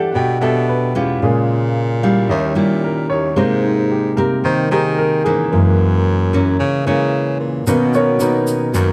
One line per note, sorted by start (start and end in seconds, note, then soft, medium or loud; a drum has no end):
0.00 0.12 E3 medium
0.00 1.18 G3 soft
0.00 1.18 A3 soft
0.00 0.37 D4 medium
0.00 1.18 D4 soft
0.00 0.37 G4 medium
0.00 0.38 A4 medium
0.00 1.23 D5 medium
0.00 0.42 E5 medium
0.00 0.11 F#5 medium
0.00 0.16 G5 medium
0.11 0.39 B2 medium
0.11 1.19 B2 medium
0.11 0.15 F#5 soft
0.16 0.41 G5 medium
0.40 0.91 B2 medium
0.40 0.91 D4 medium
0.40 0.91 G4 soft
0.40 0.91 A4 medium
0.40 0.67 E5 medium
0.69 0.95 B4 medium
0.95 1.20 E2 medium
0.95 1.98 G#3 medium
0.95 1.98 C#4 medium
0.95 1.99 F4 medium
0.95 1.22 G4 medium
1.22 2.25 A#2 medium
1.22 2.27 A#2 medium
1.22 2.26 C#3 soft
1.22 2.26 G#3 soft
1.22 1.39 G#4 medium
2.03 2.52 G3 medium
2.03 2.53 C#4 medium
2.03 2.53 E4 medium
2.03 2.29 F5 medium
2.29 2.54 D#2 loud
2.29 3.34 D#3 medium
2.29 3.33 G3 soft
2.29 3.33 C#4 soft
2.29 2.55 E5 medium
2.55 3.06 A#2 medium
2.55 3.32 G3 medium
2.55 3.32 C#4 medium
2.55 3.32 E4 medium
2.55 2.82 G4 medium
2.84 3.10 A#4 medium
3.10 3.35 D#2 medium
3.10 3.36 C#5 medium
3.36 4.13 G#2 medium
3.36 3.72 C3 soft
3.36 4.41 G#3 medium
3.36 3.73 A#3 medium
3.36 3.90 C4 medium
3.36 3.90 G4 medium
3.36 3.91 A#4 medium
3.36 3.63 C5 medium
3.64 3.90 D#4 soft
3.92 4.17 G4 medium
4.16 4.41 C3 soft
4.16 4.41 G3 soft
4.16 4.41 A#3 soft
4.16 4.67 C4 medium
4.16 4.67 G4 medium
4.16 4.43 A#4 medium
4.16 4.67 A#4 medium
4.44 5.49 D#3 medium
4.44 4.69 D#3 loud
4.44 4.71 C5 medium
4.71 5.21 D#3 medium
4.71 5.21 C4 medium
4.71 5.21 G4 medium
4.71 4.97 G#4 medium
4.71 5.21 A#4 medium
4.99 5.24 A#4 medium
5.24 5.50 G#2 medium
5.24 6.28 E3 medium
5.24 6.29 A#3 medium
5.24 6.29 C#4 medium
5.24 6.55 G#4 medium
5.52 6.55 F#2 loud
5.52 6.57 F#2 medium
5.52 5.88 E3 soft
5.52 5.88 G#3 soft
5.52 5.88 A#3 soft
6.33 6.82 E3 medium
6.33 6.82 A#3 medium
6.33 6.83 C#4 medium
6.59 6.84 C#3 medium
6.59 7.65 C#3 medium
6.86 7.36 C#3 medium
6.86 7.10 E3 soft
6.86 7.63 E3 soft
6.86 7.10 G#3 soft
6.86 7.11 A#3 soft
6.86 7.63 A#3 medium
6.86 7.63 C#4 medium
7.40 7.65 A#2 medium
7.67 8.43 B2 medium
7.67 8.72 B2 medium
7.67 8.16 D#3 medium
7.67 8.93 D#3 soft
7.67 8.17 A#3 medium
7.67 7.94 B3 soft
7.67 8.17 C#4 medium
7.67 7.94 C#4 soft
7.67 7.94 D#4 soft
7.67 7.94 F#4 soft
7.67 7.93 A#4 soft
7.67 7.94 B4 medium
7.67 shaker medium
7.94 8.21 C#4 medium
7.94 8.21 F#4 medium
7.94 8.20 A#4 medium
7.94 8.20 C#5 medium
7.94 shaker soft
8.20 8.70 D#3 medium
8.20 8.70 A#3 medium
8.20 8.71 B3 soft
8.20 8.70 C#4 medium
8.20 8.71 D#4 soft
8.20 8.71 F#4 soft
8.20 8.71 B4 medium
8.20 shaker medium
8.47 shaker medium
8.74 8.93 F#2 medium
8.74 8.93 D#3 medium
8.74 8.93 A#3 medium
8.74 8.93 C#4 medium
8.74 shaker medium